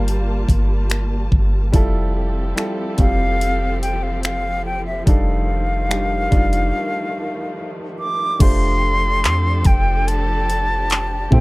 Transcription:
Already playing: 808-style bass G1, string section G3 A#3 F4 A5, grand piano G3 A#3 F4 A4 A#4 C5, flute F5
0.08 closed hi-hat
0.49 808-style bass G1, kick, closed hi-hat
0.90 finger snap, closed hi-hat
1.32 808-style bass G1, kick
1.72 808-style bass F1, string section F3 C4 G4 A4, grand piano G3 E4 F4 A4, kick, closed hi-hat
2.56 grand piano G3 E4 F4 A4, finger snap, closed hi-hat
2.97 808-style bass F1, grand piano G3 C4 F4 G4, flute F5, kick, closed hi-hat
3.41 closed hi-hat
3.82 flute G5, closed hi-hat
4.03 flute F5
4.23 flute F5, finger snap, closed hi-hat
4.65 flute G5
4.86 flute E5
5.06 808-style bass F1, string section D#3 A3, grand piano G3 D4 D#4 A4, flute F5, kick, closed hi-hat
5.89 grand piano G3 D4 D#4 G4, finger snap, closed hi-hat
6.31 808-style bass F1, grand piano G3 D4 D#4 F4, kick, closed hi-hat
6.53 closed hi-hat
7.99 flute D6
8.39 808-style bass F1, string section F3 D4 G4 A4, grand piano A3 D4 F4 G4 C5, flute C6, kick, closed hi-hat, crash
9.24 808-style bass F2, clap, closed hi-hat
9.64 808-style bass F1, flute G5, kick, closed hi-hat
10.08 flute A5, closed hi-hat
10.50 closed hi-hat
10.90 clap, closed hi-hat
11.31 808-style bass A2, grand piano A3 C4 E4 G4 C5, string section A3 C4, flute G5, kick

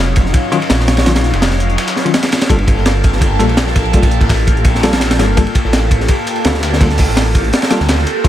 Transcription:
Already playing: detuned saw bass F1
0.16 analog synth pad F#3 C#4 D#4 F4, kick, closed hi-hat, ride
0.26 snare
0.34 kick, closed hi-hat, ride
0.52 tine electric piano D#3 F#3 C#4 F4, closed hi-hat, ride
0.62 snare, ride
0.70 detuned saw bass A#1, snare, closed hi-hat, ride
0.80 snare
0.88 snare, closed hi-hat, ride
0.97 snare, ride
1.06 tine electric piano D#3 F#3 C#4 F4, snare, closed hi-hat, ride
1.15 snare, closed hi-hat, ride
1.24 snare, closed hi-hat
1.33 detuned saw bass F1, snare, ride
1.42 snare, open hi-hat, ride
1.51 snare
1.60 analog synth pad F#3 C#4 D#4 F4, closed hi-hat
1.70 closed hi-hat
1.78 snare, closed hi-hat, ride
1.88 snare, closed hi-hat, ride
1.96 snare
2.05 tine electric piano D#3 F#3 C#4 F4, ride
2.14 snare, closed hi-hat, ride
2.23 snare, closed hi-hat, ride
2.32 snare, closed hi-hat, ride
2.41 snare, closed hi-hat, ride
2.50 detuned saw bass G1, tine electric piano G3 A#3 F4 A4, kick, closed hi-hat, ride
2.59 ride
2.67 kick, closed hi-hat, ride
2.77 snare
2.86 snare, closed hi-hat, ride
3.04 analog synth pad A#3 F4 G4 A4, kick, closed hi-hat, ride
3.13 snare
3.21 detuned saw bass G1, kick, closed hi-hat, ride
3.39 detuned saw bass A#1, tine electric piano G3 A#3 F4 A4, closed hi-hat, ride
3.49 ride
3.57 snare, closed hi-hat, ride
3.67 snare
3.76 kick, closed hi-hat, ride
3.85 ride
3.93 tine electric piano G3 A#3 F4 A4, kick, closed hi-hat, ride
4.03 kick, closed hi-hat, ride
4.11 closed hi-hat, ride
4.21 detuned saw bass A1, kick, snare, ride
4.29 kick, snare, open hi-hat, ride
4.39 ride
4.47 analog synth pad A#3 F4 G4 A4, kick, closed hi-hat, ride
4.57 closed hi-hat
4.64 detuned saw bass A#1, kick, closed hi-hat, ride
4.75 snare
4.83 tine electric piano G3 A#3 F4 A4, snare, closed hi-hat, ride
4.93 snare, ride
5.00 snare, closed hi-hat, ride
5.11 snare, ride
5.19 detuned saw bass G1, tine electric piano G3 A#3 F4 A4, snare, closed hi-hat, ride
5.37 tine electric piano G3 A#3 F4 A4, kick, closed hi-hat, ride
5.47 ride
5.55 kick, closed hi-hat, ride
5.65 detuned saw bass A1, snare
5.73 snare, closed hi-hat, ride
5.91 analog synth pad A#3 F4 G4 A4, kick, closed hi-hat, ride
6.00 snare
6.08 kick, closed hi-hat, ride
6.27 closed hi-hat, ride
6.36 ride
6.44 detuned saw bass D2, snare, closed hi-hat, ride
6.54 snare
6.63 snare, closed hi-hat, ride
6.73 snare
6.81 tine electric piano G3 A#3 F4 A4, kick, snare, closed hi-hat, ride
6.90 snare, closed hi-hat
6.98 kick, closed hi-hat, open hi-hat
7.08 detuned saw bass A1, snare
7.17 snare, open hi-hat, ride
7.26 ride
7.34 analog synth pad A#3 F4 G4 A4, kick, closed hi-hat, ride
7.44 closed hi-hat
7.53 snare, closed hi-hat, ride
7.62 snare, ride
7.70 tine electric piano G3 A#3 F4 A4, snare, closed hi-hat, ride
7.80 detuned saw bass D2, snare
7.89 snare, closed hi-hat, ride
7.98 snare
8.07 snare, closed hi-hat, ride
8.24 detuned saw bass D#1, tine electric piano D#3 F#3 C#4 F4, kick, closed hi-hat, ride

